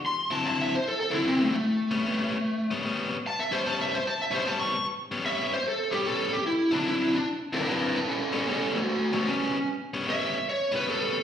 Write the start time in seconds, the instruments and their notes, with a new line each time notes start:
0.06 lead electric guitar C6
0.30 overdriven electric guitar D3 F#3 C4 E4, lead electric guitar A5
0.45 overdriven electric guitar D3 F#3 C4 E4, lead electric guitar A5
0.61 lead electric guitar E5
0.75 lead electric guitar C5
0.88 lead electric guitar A4
1.00 lead electric guitar A4
1.11 overdriven electric guitar D3 F#3 C4 E4, lead electric guitar E4
1.24 overdriven electric guitar D3 F#3 C4 E4, lead electric guitar C4
1.43 lead electric guitar A3
1.53 lead electric guitar A3
1.91 overdriven electric guitar A2 G3 B3 C#4
2.05 overdriven electric guitar A2 G3 B3 C#4
2.71 overdriven electric guitar A2 G3 B3 C#4
2.85 overdriven electric guitar A2 G3 B3 C#4
3.27 lead electric guitar A5
3.40 lead electric guitar E5
3.51 overdriven electric guitar A2 G3 B3 C#4, lead electric guitar C5
3.66 overdriven electric guitar A2 G3 B3 C#4, lead electric guitar A5
3.82 lead electric guitar E5
3.95 lead electric guitar C5
4.07 lead electric guitar A5
4.22 lead electric guitar E5
4.31 overdriven electric guitar A2 G3 B3 C#4
4.35 lead electric guitar C5
4.45 overdriven electric guitar A2 G3 B3 C#4, lead electric guitar A5
4.60 lead electric guitar C#6
5.11 overdriven electric guitar A2 G3 B3 C#4
5.24 overdriven electric guitar A2 G3 B3 C#4, lead electric guitar E5
5.53 lead electric guitar C5
5.68 lead electric guitar A4
5.91 overdriven electric guitar A2 G3 B3 C#4, lead electric guitar G4
6.06 overdriven electric guitar A2 G3 B3 C#4, lead electric guitar A4
6.33 lead electric guitar G4
6.46 lead electric guitar E4
6.71 overdriven electric guitar D3 F#3 C4 E4, lead electric guitar D4
6.86 overdriven electric guitar D3 F#3 C4 E4, lead electric guitar E4
7.14 lead electric guitar D4
7.53 overdriven electric guitar D3 F#3 C4 E4, lead electric guitar D4 B4
7.67 overdriven electric guitar D3 F#3 C4 E4, lead electric guitar D4 B4
7.95 lead electric guitar D4 B4
8.08 lead electric guitar C#4 A4
8.32 overdriven electric guitar A2 G3 B3 C#4, lead electric guitar C#4 A4
8.47 overdriven electric guitar A2 G3 B3 C#4, lead electric guitar C#4 A4
8.75 lead electric guitar A3 F#4
8.89 lead electric guitar A3 F#4
9.13 overdriven electric guitar A2 G3 B3 C#4, lead electric guitar A3 F#4
9.26 overdriven electric guitar A2 G3 B3 C#4, lead electric guitar C#4
9.94 overdriven electric guitar A2 G3 B3 C#4
10.07 overdriven electric guitar A2 G3 B3 C#4, lead electric guitar E5
10.49 lead electric guitar C#5
10.72 overdriven electric guitar A2 G3 B3 C#4, lead electric guitar B4
10.86 overdriven electric guitar A2 G3 B3 C#4
10.90 lead electric guitar A4